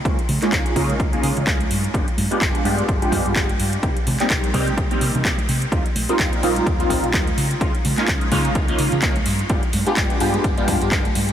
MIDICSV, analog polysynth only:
0, 0, Header, 1, 2, 480
1, 0, Start_track
1, 0, Tempo, 472441
1, 52, Time_signature, 4, 2, 24, 8
1, 11505, End_track
2, 0, Start_track
2, 0, Title_t, "Analog polysynth"
2, 0, Program_c, 0, 90
2, 50, Note_on_c, 0, 56, 94
2, 53, Note_on_c, 0, 58, 79
2, 54, Note_on_c, 0, 61, 79
2, 56, Note_on_c, 0, 63, 87
2, 59, Note_on_c, 0, 65, 99
2, 169, Note_off_c, 0, 56, 0
2, 171, Note_off_c, 0, 58, 0
2, 171, Note_off_c, 0, 61, 0
2, 172, Note_off_c, 0, 63, 0
2, 173, Note_off_c, 0, 65, 0
2, 426, Note_on_c, 0, 56, 100
2, 430, Note_on_c, 0, 58, 90
2, 432, Note_on_c, 0, 61, 92
2, 432, Note_on_c, 0, 63, 92
2, 435, Note_on_c, 0, 65, 110
2, 746, Note_off_c, 0, 56, 0
2, 748, Note_off_c, 0, 58, 0
2, 749, Note_off_c, 0, 61, 0
2, 749, Note_off_c, 0, 63, 0
2, 751, Note_off_c, 0, 65, 0
2, 771, Note_on_c, 0, 56, 97
2, 774, Note_on_c, 0, 58, 90
2, 775, Note_on_c, 0, 61, 91
2, 776, Note_on_c, 0, 63, 98
2, 778, Note_on_c, 0, 65, 111
2, 1114, Note_off_c, 0, 56, 0
2, 1116, Note_off_c, 0, 58, 0
2, 1116, Note_off_c, 0, 61, 0
2, 1117, Note_off_c, 0, 63, 0
2, 1118, Note_off_c, 0, 65, 0
2, 1144, Note_on_c, 0, 56, 103
2, 1146, Note_on_c, 0, 58, 88
2, 1149, Note_on_c, 0, 61, 91
2, 1150, Note_on_c, 0, 63, 87
2, 1153, Note_on_c, 0, 65, 110
2, 1465, Note_off_c, 0, 56, 0
2, 1467, Note_off_c, 0, 58, 0
2, 1468, Note_off_c, 0, 61, 0
2, 1468, Note_off_c, 0, 63, 0
2, 1470, Note_off_c, 0, 65, 0
2, 1489, Note_on_c, 0, 56, 95
2, 1491, Note_on_c, 0, 58, 79
2, 1495, Note_on_c, 0, 61, 83
2, 1496, Note_on_c, 0, 63, 80
2, 1498, Note_on_c, 0, 65, 101
2, 1609, Note_off_c, 0, 56, 0
2, 1610, Note_off_c, 0, 58, 0
2, 1611, Note_off_c, 0, 61, 0
2, 1612, Note_off_c, 0, 63, 0
2, 1613, Note_off_c, 0, 65, 0
2, 1971, Note_on_c, 0, 56, 89
2, 1971, Note_on_c, 0, 59, 85
2, 1973, Note_on_c, 0, 62, 83
2, 1977, Note_on_c, 0, 65, 88
2, 1980, Note_on_c, 0, 67, 108
2, 2089, Note_off_c, 0, 56, 0
2, 2090, Note_off_c, 0, 59, 0
2, 2091, Note_off_c, 0, 62, 0
2, 2092, Note_off_c, 0, 65, 0
2, 2094, Note_off_c, 0, 67, 0
2, 2345, Note_on_c, 0, 56, 101
2, 2348, Note_on_c, 0, 59, 93
2, 2349, Note_on_c, 0, 62, 92
2, 2353, Note_on_c, 0, 65, 92
2, 2355, Note_on_c, 0, 67, 108
2, 2666, Note_off_c, 0, 56, 0
2, 2667, Note_off_c, 0, 59, 0
2, 2668, Note_off_c, 0, 62, 0
2, 2670, Note_off_c, 0, 65, 0
2, 2671, Note_off_c, 0, 67, 0
2, 2690, Note_on_c, 0, 56, 104
2, 2692, Note_on_c, 0, 59, 93
2, 2694, Note_on_c, 0, 62, 93
2, 2697, Note_on_c, 0, 65, 94
2, 2699, Note_on_c, 0, 67, 111
2, 3034, Note_off_c, 0, 56, 0
2, 3035, Note_off_c, 0, 59, 0
2, 3036, Note_off_c, 0, 62, 0
2, 3037, Note_off_c, 0, 65, 0
2, 3038, Note_off_c, 0, 67, 0
2, 3065, Note_on_c, 0, 56, 100
2, 3066, Note_on_c, 0, 59, 91
2, 3069, Note_on_c, 0, 62, 87
2, 3071, Note_on_c, 0, 67, 113
2, 3072, Note_on_c, 0, 65, 91
2, 3386, Note_off_c, 0, 56, 0
2, 3387, Note_off_c, 0, 59, 0
2, 3388, Note_off_c, 0, 62, 0
2, 3389, Note_off_c, 0, 65, 0
2, 3389, Note_off_c, 0, 67, 0
2, 3413, Note_on_c, 0, 56, 87
2, 3414, Note_on_c, 0, 59, 86
2, 3416, Note_on_c, 0, 62, 84
2, 3419, Note_on_c, 0, 65, 84
2, 3420, Note_on_c, 0, 67, 99
2, 3530, Note_off_c, 0, 56, 0
2, 3531, Note_off_c, 0, 59, 0
2, 3532, Note_off_c, 0, 62, 0
2, 3533, Note_off_c, 0, 65, 0
2, 3534, Note_off_c, 0, 67, 0
2, 3891, Note_on_c, 0, 55, 95
2, 3892, Note_on_c, 0, 58, 83
2, 3895, Note_on_c, 0, 60, 83
2, 3896, Note_on_c, 0, 63, 83
2, 3898, Note_on_c, 0, 67, 106
2, 4009, Note_off_c, 0, 55, 0
2, 4010, Note_off_c, 0, 58, 0
2, 4011, Note_off_c, 0, 60, 0
2, 4012, Note_off_c, 0, 63, 0
2, 4013, Note_off_c, 0, 67, 0
2, 4268, Note_on_c, 0, 55, 101
2, 4272, Note_on_c, 0, 58, 93
2, 4272, Note_on_c, 0, 60, 88
2, 4275, Note_on_c, 0, 63, 93
2, 4275, Note_on_c, 0, 67, 113
2, 4587, Note_off_c, 0, 55, 0
2, 4589, Note_off_c, 0, 58, 0
2, 4589, Note_off_c, 0, 60, 0
2, 4591, Note_off_c, 0, 63, 0
2, 4591, Note_off_c, 0, 67, 0
2, 4611, Note_on_c, 0, 55, 99
2, 4614, Note_on_c, 0, 58, 94
2, 4615, Note_on_c, 0, 60, 94
2, 4616, Note_on_c, 0, 63, 95
2, 4619, Note_on_c, 0, 67, 116
2, 4955, Note_off_c, 0, 55, 0
2, 4956, Note_off_c, 0, 58, 0
2, 4956, Note_off_c, 0, 60, 0
2, 4957, Note_off_c, 0, 63, 0
2, 4958, Note_off_c, 0, 67, 0
2, 4984, Note_on_c, 0, 55, 101
2, 4988, Note_on_c, 0, 58, 90
2, 4989, Note_on_c, 0, 60, 92
2, 4991, Note_on_c, 0, 63, 89
2, 4993, Note_on_c, 0, 67, 103
2, 5305, Note_off_c, 0, 55, 0
2, 5307, Note_off_c, 0, 58, 0
2, 5308, Note_off_c, 0, 60, 0
2, 5309, Note_off_c, 0, 63, 0
2, 5310, Note_off_c, 0, 67, 0
2, 5332, Note_on_c, 0, 55, 88
2, 5334, Note_on_c, 0, 58, 84
2, 5335, Note_on_c, 0, 60, 83
2, 5337, Note_on_c, 0, 63, 84
2, 5339, Note_on_c, 0, 67, 102
2, 5450, Note_off_c, 0, 55, 0
2, 5451, Note_off_c, 0, 58, 0
2, 5452, Note_off_c, 0, 60, 0
2, 5453, Note_off_c, 0, 63, 0
2, 5454, Note_off_c, 0, 67, 0
2, 5815, Note_on_c, 0, 55, 97
2, 5815, Note_on_c, 0, 58, 83
2, 5817, Note_on_c, 0, 60, 83
2, 5820, Note_on_c, 0, 65, 98
2, 5821, Note_on_c, 0, 63, 80
2, 5931, Note_off_c, 0, 55, 0
2, 5931, Note_off_c, 0, 58, 0
2, 5932, Note_off_c, 0, 60, 0
2, 5934, Note_off_c, 0, 63, 0
2, 5934, Note_off_c, 0, 65, 0
2, 6187, Note_on_c, 0, 55, 96
2, 6189, Note_on_c, 0, 58, 92
2, 6190, Note_on_c, 0, 60, 97
2, 6193, Note_on_c, 0, 63, 90
2, 6196, Note_on_c, 0, 65, 108
2, 6507, Note_off_c, 0, 55, 0
2, 6508, Note_off_c, 0, 58, 0
2, 6508, Note_off_c, 0, 60, 0
2, 6510, Note_off_c, 0, 63, 0
2, 6511, Note_off_c, 0, 65, 0
2, 6531, Note_on_c, 0, 55, 96
2, 6534, Note_on_c, 0, 58, 92
2, 6535, Note_on_c, 0, 60, 96
2, 6538, Note_on_c, 0, 63, 95
2, 6539, Note_on_c, 0, 65, 110
2, 6874, Note_off_c, 0, 55, 0
2, 6876, Note_off_c, 0, 58, 0
2, 6876, Note_off_c, 0, 60, 0
2, 6878, Note_off_c, 0, 63, 0
2, 6879, Note_off_c, 0, 65, 0
2, 6901, Note_on_c, 0, 55, 94
2, 6905, Note_on_c, 0, 58, 85
2, 6905, Note_on_c, 0, 60, 92
2, 6908, Note_on_c, 0, 63, 86
2, 6911, Note_on_c, 0, 65, 113
2, 7224, Note_off_c, 0, 55, 0
2, 7226, Note_off_c, 0, 58, 0
2, 7226, Note_off_c, 0, 60, 0
2, 7227, Note_off_c, 0, 63, 0
2, 7229, Note_off_c, 0, 65, 0
2, 7250, Note_on_c, 0, 55, 86
2, 7251, Note_on_c, 0, 58, 84
2, 7255, Note_on_c, 0, 60, 82
2, 7258, Note_on_c, 0, 63, 86
2, 7258, Note_on_c, 0, 65, 94
2, 7369, Note_off_c, 0, 55, 0
2, 7370, Note_off_c, 0, 58, 0
2, 7371, Note_off_c, 0, 60, 0
2, 7373, Note_off_c, 0, 63, 0
2, 7373, Note_off_c, 0, 65, 0
2, 7733, Note_on_c, 0, 56, 86
2, 7733, Note_on_c, 0, 58, 84
2, 7736, Note_on_c, 0, 61, 84
2, 7740, Note_on_c, 0, 63, 89
2, 7742, Note_on_c, 0, 65, 107
2, 7851, Note_off_c, 0, 56, 0
2, 7851, Note_off_c, 0, 58, 0
2, 7852, Note_off_c, 0, 61, 0
2, 7854, Note_off_c, 0, 63, 0
2, 7855, Note_off_c, 0, 65, 0
2, 8101, Note_on_c, 0, 56, 100
2, 8103, Note_on_c, 0, 58, 89
2, 8105, Note_on_c, 0, 61, 91
2, 8109, Note_on_c, 0, 63, 91
2, 8110, Note_on_c, 0, 65, 108
2, 8424, Note_off_c, 0, 56, 0
2, 8425, Note_off_c, 0, 58, 0
2, 8426, Note_off_c, 0, 61, 0
2, 8428, Note_off_c, 0, 63, 0
2, 8428, Note_off_c, 0, 65, 0
2, 8450, Note_on_c, 0, 56, 102
2, 8451, Note_on_c, 0, 58, 93
2, 8453, Note_on_c, 0, 61, 93
2, 8456, Note_on_c, 0, 63, 92
2, 8457, Note_on_c, 0, 65, 118
2, 8794, Note_off_c, 0, 56, 0
2, 8794, Note_off_c, 0, 58, 0
2, 8795, Note_off_c, 0, 61, 0
2, 8797, Note_off_c, 0, 63, 0
2, 8798, Note_off_c, 0, 65, 0
2, 8824, Note_on_c, 0, 56, 98
2, 8826, Note_on_c, 0, 58, 89
2, 8830, Note_on_c, 0, 61, 87
2, 8830, Note_on_c, 0, 63, 86
2, 8831, Note_on_c, 0, 65, 109
2, 9146, Note_off_c, 0, 56, 0
2, 9146, Note_off_c, 0, 58, 0
2, 9148, Note_off_c, 0, 61, 0
2, 9148, Note_off_c, 0, 63, 0
2, 9149, Note_off_c, 0, 65, 0
2, 9168, Note_on_c, 0, 56, 92
2, 9169, Note_on_c, 0, 58, 80
2, 9173, Note_on_c, 0, 61, 85
2, 9174, Note_on_c, 0, 63, 82
2, 9175, Note_on_c, 0, 65, 97
2, 9288, Note_off_c, 0, 56, 0
2, 9288, Note_off_c, 0, 58, 0
2, 9290, Note_off_c, 0, 61, 0
2, 9291, Note_off_c, 0, 63, 0
2, 9291, Note_off_c, 0, 65, 0
2, 9647, Note_on_c, 0, 56, 91
2, 9648, Note_on_c, 0, 59, 85
2, 9650, Note_on_c, 0, 62, 88
2, 9651, Note_on_c, 0, 65, 87
2, 9653, Note_on_c, 0, 67, 105
2, 9767, Note_off_c, 0, 56, 0
2, 9768, Note_off_c, 0, 59, 0
2, 9769, Note_off_c, 0, 62, 0
2, 9770, Note_off_c, 0, 65, 0
2, 9770, Note_off_c, 0, 67, 0
2, 10021, Note_on_c, 0, 56, 100
2, 10023, Note_on_c, 0, 59, 91
2, 10025, Note_on_c, 0, 62, 88
2, 10028, Note_on_c, 0, 65, 93
2, 10029, Note_on_c, 0, 67, 114
2, 10344, Note_off_c, 0, 56, 0
2, 10345, Note_off_c, 0, 59, 0
2, 10346, Note_off_c, 0, 62, 0
2, 10347, Note_off_c, 0, 65, 0
2, 10348, Note_off_c, 0, 67, 0
2, 10367, Note_on_c, 0, 56, 102
2, 10370, Note_on_c, 0, 62, 94
2, 10371, Note_on_c, 0, 59, 91
2, 10373, Note_on_c, 0, 65, 98
2, 10375, Note_on_c, 0, 67, 113
2, 10712, Note_off_c, 0, 56, 0
2, 10714, Note_off_c, 0, 59, 0
2, 10714, Note_off_c, 0, 62, 0
2, 10716, Note_off_c, 0, 65, 0
2, 10716, Note_off_c, 0, 67, 0
2, 10743, Note_on_c, 0, 56, 95
2, 10744, Note_on_c, 0, 59, 89
2, 10747, Note_on_c, 0, 62, 86
2, 10748, Note_on_c, 0, 65, 92
2, 10750, Note_on_c, 0, 67, 109
2, 11065, Note_off_c, 0, 56, 0
2, 11066, Note_off_c, 0, 59, 0
2, 11067, Note_off_c, 0, 62, 0
2, 11067, Note_off_c, 0, 65, 0
2, 11068, Note_off_c, 0, 67, 0
2, 11084, Note_on_c, 0, 56, 93
2, 11088, Note_on_c, 0, 59, 84
2, 11089, Note_on_c, 0, 62, 82
2, 11091, Note_on_c, 0, 65, 82
2, 11095, Note_on_c, 0, 67, 100
2, 11206, Note_off_c, 0, 56, 0
2, 11208, Note_off_c, 0, 59, 0
2, 11209, Note_off_c, 0, 62, 0
2, 11210, Note_off_c, 0, 65, 0
2, 11211, Note_off_c, 0, 67, 0
2, 11505, End_track
0, 0, End_of_file